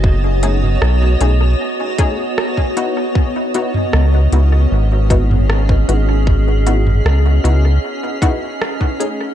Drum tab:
HH |--x---x---x---x-|--x---x---x---x-|--x---x---x---x-|
SD |----r-------r---|----r-------r---|----r-------r---|
T2 |---o------------|---o-------o----|---o------------|
BD |o---------o--o--|o---------o--o--|o---------o--o--|